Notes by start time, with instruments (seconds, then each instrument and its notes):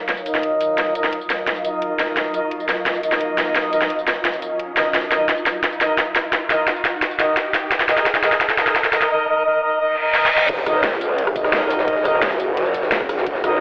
Already playing: synth drone F#3 F4 D#5, ambient pad F#3 D#4 A#4 F5, riser
0.09 snare, closed hi-hat
0.17 tambourine
0.26 brass ensemble D#4 A#4 D#5, closed hi-hat, tambourine
0.35 snare
0.43 closed hi-hat
0.61 open hi-hat, tambourine
0.78 snare, closed hi-hat
0.95 brass ensemble D#4 A#4 D#5, closed hi-hat, tambourine
1.04 snare
1.13 closed hi-hat
1.21 tambourine
1.30 snare, closed hi-hat, tambourine
1.47 snare, closed hi-hat
1.56 tambourine
1.65 brass ensemble D#4 A#4 D#5, closed hi-hat, tambourine
1.82 closed hi-hat
1.99 snare, open hi-hat, tambourine
2.17 snare, closed hi-hat
2.34 brass ensemble D#4 A#4 D#5, closed hi-hat, tambourine
2.51 closed hi-hat
2.60 tambourine
2.69 snare, closed hi-hat, tambourine
2.86 snare, closed hi-hat
2.95 tambourine
3.03 brass ensemble D#4 A#4 D#5, closed hi-hat, tambourine
3.12 snare
3.21 closed hi-hat
3.38 snare, open hi-hat, tambourine
3.55 snare, closed hi-hat
3.73 brass ensemble D#4 A#4 D#5, closed hi-hat, tambourine
3.81 snare
3.90 closed hi-hat
3.99 tambourine
4.07 snare, closed hi-hat, tambourine
4.25 snare, closed hi-hat
4.34 closed hi-hat, tambourine
4.42 closed hi-hat, tambourine
4.59 closed hi-hat
4.77 brass ensemble D#4 A#4 D#5, snare, open hi-hat, tambourine
4.94 synth drone D#4, snare, closed hi-hat
5.11 brass ensemble D#4 A#4 D#5, snare, closed hi-hat, tambourine
5.29 snare, closed hi-hat
5.38 tambourine
5.46 snare, closed hi-hat, tambourine
5.64 snare, closed hi-hat
5.72 tambourine
5.81 brass ensemble D#4 A#4 D#5, snare, closed hi-hat, tambourine
5.98 snare, closed hi-hat
6.16 snare, open hi-hat, tambourine
6.33 snare, closed hi-hat
6.50 brass ensemble D#4 A#4 D#5, snare, closed hi-hat, tambourine
6.68 snare, closed hi-hat
6.76 tambourine
6.85 snare, closed hi-hat, tambourine
7.02 snare, closed hi-hat
7.11 tambourine
7.20 brass ensemble D#4 A#4 D#5, snare, closed hi-hat, tambourine
7.37 snare, closed hi-hat
7.54 snare, open hi-hat, tambourine
7.72 snare, closed hi-hat
7.80 snare
7.89 brass ensemble D#4 A#4 D#5, snare, closed hi-hat, tambourine
7.98 snare
8.06 snare, closed hi-hat
8.15 snare, tambourine
8.23 brass ensemble D#4 A#4 D#5, snare, closed hi-hat, tambourine
8.32 snare
8.41 snare, closed hi-hat
8.50 snare, tambourine
8.58 brass ensemble D#4 A#4 D#5, snare, closed hi-hat, tambourine
8.67 snare
8.76 snare, closed hi-hat
8.84 snare
8.93 brass ensemble D#4 A#4 D#5, snare, open hi-hat, tambourine
9.02 snare
9.10 brass ensemble D#4 A#4 D#5
9.28 brass ensemble D#4 A#4 D#5
9.45 brass ensemble D#4 A#4 D#5
9.62 brass ensemble D#4 A#4 D#5
9.80 brass ensemble D#4 A#4 D#5, reverse cymbal
9.97 brass ensemble D#4 A#4 D#5
10.14 brass ensemble D#4 A#4 D#5, snare
10.26 snare
10.32 brass ensemble D#4 A#4 D#5
10.37 snare
10.49 wobble bass D#1, synth drone D#4 F4 F#4, kick, closed hi-hat, ride, crash, impact
10.58 snare
10.66 wobble bass C#2, brass ensemble D#4 A#4 D#5, kick, cross-stick, closed hi-hat, ride, tambourine
10.84 snare, closed hi-hat, ride
10.92 snare, tambourine
11.01 closed hi-hat, ride, tambourine
11.18 closed hi-hat, ride
11.27 cross-stick, tambourine
11.36 brass ensemble D#4 A#4 D#5, kick, closed hi-hat, ride, tambourine
11.44 cross-stick, snare
11.53 wobble bass F#1, snare, closed hi-hat, ride
11.70 open hi-hat, ride, tambourine
11.79 snare
11.88 kick, closed hi-hat, ride
11.96 snare
12.05 brass ensemble D#4 A#4 D#5, cross-stick, closed hi-hat, ride, tambourine
12.22 snare, closed hi-hat, ride
12.31 snare, tambourine
12.40 wobble bass F#1, closed hi-hat, ride, tambourine
12.57 closed hi-hat, ride
12.66 tambourine
12.74 kick, closed hi-hat, ride, tambourine
12.83 snare
12.92 snare, closed hi-hat, ride
13.00 kick, cross-stick, zap
13.09 cross-stick, open hi-hat, tambourine
13.18 snare
13.27 wobble bass D#1, kick, closed hi-hat, ride
13.35 snare
13.44 wobble bass C#2, brass ensemble D#4 A#4 D#5, kick, cross-stick, closed hi-hat, ride, tambourine